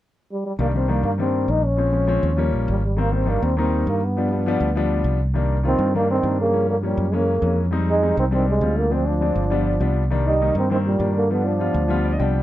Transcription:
0.32 G3
0.46 G3
0.59 C2 D#3 G3 A#3 D4
0.74 D#3 G3 A#3 C4 D4
0.88 D#3 G3 A#3 D4
1.03 G2 A#3
1.18 D#3 G3 A#3 C4 D4
1.48 A#1 D#4
1.65 C#4
1.77 F3 G#3 C4 C#4
1.92 F3 G#3 C4 C#4
2.07 F3 G#3 C4 C#4
2.23 D#2
2.37 F3 G3 A#3 C#4
2.53 A#1
2.68 G#1 G3
2.85 G3
2.96 D#3 G3 A#3 C4
3.11 D#3 G3 A#3 C4
3.26 D#3 G3 A#3 D4
3.42 D#2 C4
3.57 D#3 G3 A#3 C4 D#4
3.87 G2 A#3
4.04 B3
4.17 F3 G3 B3 D4
4.31 F3 G3 B3 D4
4.46 F3 G3 B3 D4
4.60 D2
4.75 F3 G3 B3 D4
5.04 C2
5.34 D#3 G3 A#3 D4
5.63 D#3 G3 A#3 C4 F4
5.79 G2
5.94 D#3 G3 A#3 D4
6.11 D#3 C4
6.23 G2 D#3 G3 A#3 D4
6.40 C#3 A#3
6.52 F3 G3 A#3 C#4
6.70 D3 A#3
6.82 A#2 F3 G3 A#3 C#4
6.97 F#2
7.12 C#3 E3 G#3 A#3 C#4
7.41 F2 E3 G#3 A#3 C#4
7.71 G3 G#3 C4 D#4
7.88 G#3 D#4
8.01 G3 G#3 C4 D#4
8.17 C2 D#3 C4
8.31 D#3 G3 G#3 C4 D4
8.49 C3 G#3
8.61 D2 G3 G#3 C4 F4
8.77 D3 A#3
8.90 F3 G#3 C4 D4
9.07 F3 D4
9.21 F3 G#3 C4 D4
9.36 G1
9.50 F3 G3 B3 D4
9.80 C2 F3 G3 B3 D4
10.10 D#3 G3 A#3 D4
10.27 G3 D#4
10.41 D#3 G3 A#3 D#4
10.55 G2 D#3 C4
10.70 D#3 G3 A#3 C4
10.86 A#2 G3
10.99 G2 D#3 G3 A#3 D4
11.16 D3 A#3
11.30 D3 F3 G3 B3 D4
11.45 F3 D4
11.59 F3 G3 B3 F4
11.74 D2
11.88 F3 G3 B3 F4
12.05 D5
12.12 D#5
12.19 C2 F3 G3 B3 D4 G5

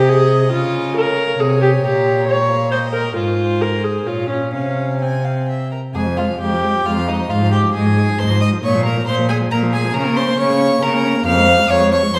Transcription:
Already playing: C3 G4 D#5 A#5
0.09 G#4 G#5
0.52 C#3 F4 G#5
0.96 A#4 C#5 F5
1.39 C3 G#4 G#5
1.62 G4
1.83 A#2 G4 A#5
2.28 C#5 A#5
2.50 F5
2.71 C5 D#5 G5
2.93 A#4
3.16 G#2 F4 C5 G#5
3.61 A#4
3.84 G#4
4.06 A#2 F4 C#5 F5
4.30 C#4
4.53 C3 C#4 F5 G#5
5.01 C4 G#5
5.25 F5
5.48 E5 G5
5.71 A#4 A#5
5.94 F2 G#3 G#4 G#5
6.06 F3
6.17 G#3 F4 F5
6.29 F3
6.40 F2 G#3 G4 G5
6.52 F3
6.63 G#3
6.75 F3
6.85 F2 G#3 F4 F5
6.97 F3
7.08 G#3 D#4 D#5
7.20 F3
7.30 G#2 G#3 F4 F5
7.41 F3
7.52 G#3 G4 G5
7.63 F3
7.74 G#2 G#3 G#4 G#5
7.86 F3
7.97 G#3
8.08 F3
8.18 G#2 G#3 C5 C6
8.30 F3
8.41 G#3 D#5 D#6
8.52 F3
8.63 A#2 A#3 C#5 C#6
8.75 F3
8.85 A#3 A#4 A#5
8.97 F3
9.07 A#2 A#3 C5 C6
9.18 F3
9.29 A#3 G#4 G#5
9.41 F3
9.51 A#2 A#3 A#4 A#5
9.63 F3
9.72 A#3 G#4 G#5
9.84 F3
9.94 C#3 C#4 A#4 A#5
10.06 A#3
10.16 C#4 C5 C6
10.27 A#3
10.38 C#3 C#4 C#5 C#6
10.49 A#3
10.61 C#4
10.72 A#3
10.82 C#3 C#4 A#4 A#5
10.93 A#3
11.04 C#4
11.15 A#3
11.26 F2 F3 F5 F6
11.37 G#3
11.47 F3
11.58 G#3
11.69 F2 F3 C#5 C#6
11.80 G#3
11.91 F3 C#5 C#6
12.02 G#3
12.13 F2 F3 C5 C6

